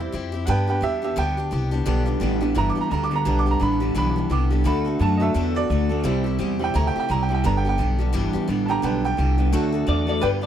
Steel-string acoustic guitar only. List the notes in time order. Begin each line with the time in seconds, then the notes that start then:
Already playing: G4
0.00 C4 E4
0.12 G3 C4 E4 G4
0.32 C4 E4 G4
0.47 G2 D3 G3 B3 D4 G4
0.67 G3 B3 D4 G4
0.81 G3 B3 D4 G4
1.02 G3 B3 D4 G4
1.16 G2 D3 G3 B3 D4 G4
1.37 G3 B3 D4 G4
1.51 G3 B3 D4 G4
1.71 G3 B3 D4 G4
1.86 G2 D3 G3 B3 D4 G4
2.06 G3 B3 D4 G4
2.20 G3 B3 D4 G4
2.40 G3 B3 D4 G4
2.55 G2 D3 G3 B3 D4 G4
2.75 G3 B3 D4 G4
2.91 G3 B3 D4 G4
3.11 G3 B3 D4 G4
3.25 G2 D3 G3 B3 D4 G4
3.46 G3 B3 D4 G4
3.60 G3 B3 D4 G4
3.80 G3 B3 D4 G4
3.95 G2 D3 G3 B3 D4 G4
4.16 G3 B3 D4 G4
4.30 G3 B3 D4 G4
4.51 G3 B3 D4 G4
4.64 D3 A3 D4 F#4 A4
4.85 D4 F#4 A4
4.99 A3 D4 F#4 A4
5.20 D4 F#4 A4
5.34 D3 A3 D4 F#4 A4
5.55 D4 F#4 A4
5.70 A3 D4 F#4 A4
5.89 D4 F#4 A4
6.04 C3 G3 C4 E4 G4
6.24 C4 E4 G4
6.39 G3 C4 E4 G4
6.59 C4 E4 G4
6.74 C3 G3 C4 E4 G4
6.96 C4 E4 G4
7.09 G3 C4 E4 G4
7.29 C4 E4 G4
7.44 G2 D3 G3 B3 D4 G4
7.65 G3 B3 D4 G4
7.78 G3 B3 D4 G4
7.99 G3 B3 D4 G4
8.13 G2 D3 G3 B3 D4 G4
8.33 G3 B3 D4 G4
8.48 G3 B3 D4 G4
8.68 G3 B3 D4 G4
8.82 G2 D3 G3 B3 D4 G4
9.04 G3 B3 D4 G4
9.17 G3 B3 D4 G4
9.38 G3 B3 D4 G4
9.53 D3 A3 D4 F#4 A4
9.72 D4 F#4 A4
9.86 A3 D4 F#4 A4
10.07 D4 F#4 A4
10.21 G2 D3 G3 B3 D4 G4
10.41 B3 D4 G4